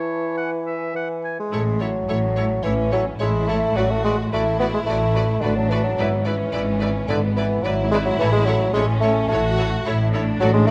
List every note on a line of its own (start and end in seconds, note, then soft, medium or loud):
0.00 0.91 E3 medium
0.00 1.19 E4 soft
0.00 0.33 C#5 soft
0.00 0.35 A5 soft
0.36 0.50 F#5 medium
0.36 1.23 G#5 soft
0.66 0.94 E5 soft
0.95 1.35 E3 soft
0.95 1.09 F#5 soft
1.24 1.37 G#5 soft
1.39 1.83 G#3 medium
1.52 2.02 A1 medium
1.52 2.01 A2 medium
1.52 1.60 E4 medium
1.52 1.60 A4 medium
1.52 1.61 C#5 medium
1.80 2.65 F#3 medium
1.80 1.89 E4 soft
1.80 1.88 A4 medium
1.80 1.88 C#5 soft
2.08 2.57 A1 medium
2.08 2.58 A2 medium
2.08 2.16 E4 medium
2.08 2.17 A4 medium
2.08 2.17 C#5 medium
2.36 2.45 E4 soft
2.36 2.45 A4 medium
2.36 2.44 C#5 soft
2.63 3.13 A1 medium
2.63 3.13 A2 medium
2.63 2.92 E3 medium
2.63 3.16 C#4 medium
2.63 2.73 E4 soft
2.63 2.73 A4 soft
2.63 2.72 C#5 medium
2.92 3.05 F#3 medium
2.92 3.01 E4 medium
2.92 3.00 A4 medium
2.92 3.00 C#5 medium
3.19 3.69 A1 medium
3.19 3.69 A2 medium
3.19 3.50 G#3 medium
3.19 3.75 E4 medium
3.19 3.29 E4 medium
3.19 3.29 A4 medium
3.19 3.28 C#5 medium
3.48 3.78 A3 medium
3.48 3.56 E4 medium
3.48 3.56 A4 medium
3.48 3.57 C#5 soft
3.75 4.25 A1 medium
3.75 4.25 A2 medium
3.75 3.92 F#3 medium
3.75 3.83 F#4 medium
3.75 4.32 F#4 medium
3.75 3.83 B4 medium
3.75 3.85 D5 medium
3.91 4.04 A3 medium
4.04 4.17 G#3 medium
4.04 4.12 F#4 medium
4.04 4.12 B4 soft
4.04 4.13 D5 soft
4.31 4.80 A1 medium
4.31 4.81 A2 medium
4.31 4.59 A3 medium
4.31 5.41 E4 medium
4.31 4.41 F#4 medium
4.31 4.41 B4 medium
4.31 4.42 D5 medium
4.59 4.66 B3 medium
4.59 4.67 F#4 medium
4.59 4.68 B4 medium
4.59 4.69 D5 soft
4.74 4.80 G#3 medium
4.86 5.36 A1 medium
4.86 5.36 A2 medium
4.86 5.43 A3 medium
4.86 4.95 F#4 medium
4.86 4.96 B4 soft
4.86 4.96 D5 medium
5.15 5.23 F#4 soft
5.15 5.23 B4 medium
5.15 5.24 D5 medium
5.41 5.91 A1 medium
5.41 5.92 A2 medium
5.41 5.57 D3 medium
5.41 5.97 D4 medium
5.41 5.51 F#4 medium
5.41 5.50 B4 medium
5.41 5.51 D5 soft
5.56 5.71 F#3 medium
5.69 5.83 E3 medium
5.69 5.79 F#4 medium
5.69 5.79 B4 medium
5.69 5.79 D5 medium
5.84 6.27 F#3 medium
5.98 6.47 G#1 medium
5.98 6.47 G#2 medium
5.98 6.26 B3 medium
5.98 6.07 E4 medium
5.98 6.07 B4 medium
5.98 6.06 D5 soft
6.25 7.07 E3 medium
6.25 7.07 C#4 medium
6.25 6.34 E4 medium
6.25 6.34 B4 medium
6.25 6.33 D5 medium
6.53 7.02 G#1 medium
6.53 7.03 G#2 medium
6.53 6.61 E4 medium
6.53 6.61 B4 medium
6.53 6.61 D5 medium
6.80 6.88 E4 medium
6.80 6.89 B4 medium
6.80 6.89 D5 medium
7.08 7.58 G#1 medium
7.08 7.58 G#2 medium
7.08 7.21 D3 medium
7.08 7.65 B3 medium
7.08 7.17 E4 medium
7.08 7.17 B4 soft
7.08 7.16 D5 medium
7.36 7.65 E3 medium
7.36 7.44 E4 medium
7.36 7.44 B4 medium
7.36 7.45 D5 medium
7.63 8.13 G#1 medium
7.63 8.13 G#2 medium
7.63 7.91 F#3 medium
7.63 7.73 E4 medium
7.63 8.73 E4 medium
7.63 7.73 B4 medium
7.63 7.72 D5 medium
7.91 7.98 G#3 loud
7.91 8.01 E4 medium
7.91 8.01 B4 medium
7.91 8.01 D5 medium
8.05 8.18 F#3 medium
8.19 8.69 A1 medium
8.19 8.68 A2 medium
8.19 8.32 E3 medium
8.19 8.29 E4 medium
8.19 8.28 A4 medium
8.19 8.28 C#5 medium
8.32 8.47 G#3 medium
8.45 8.73 F#3 medium
8.45 8.56 E4 medium
8.45 8.56 A4 medium
8.45 8.56 C#5 medium
8.73 9.24 A1 medium
8.73 9.23 A2 medium
8.73 8.86 G#3 medium
8.73 9.29 C#4 medium
8.73 8.83 E4 medium
8.73 8.83 A4 medium
8.73 8.84 C#5 medium
9.00 9.28 A3 medium
9.00 9.12 E4 medium
9.00 9.12 A4 medium
9.00 9.10 C#5 medium
9.28 9.79 A1 medium
9.28 9.79 A2 medium
9.28 9.84 A3 medium
9.28 9.40 E4 medium
9.28 9.85 F#4 medium
9.28 9.40 A4 medium
9.28 9.39 C#5 medium
9.58 9.67 E4 medium
9.58 9.67 A4 medium
9.58 9.66 C#5 medium
9.85 10.35 A1 medium
9.85 10.34 A2 medium
9.85 10.13 E4 medium
9.85 9.94 E4 medium
9.85 9.95 A4 medium
9.85 9.95 C#5 medium
10.13 10.71 D4 medium
10.13 10.22 E4 medium
10.13 10.22 A4 medium
10.13 10.22 C#5 medium
10.40 10.71 A1 medium
10.40 10.71 A2 medium
10.40 10.53 F#3 loud
10.40 10.50 F#4 medium
10.40 10.50 A4 medium
10.40 10.48 D5 medium
10.53 10.66 G#3 medium
10.67 10.71 A3 medium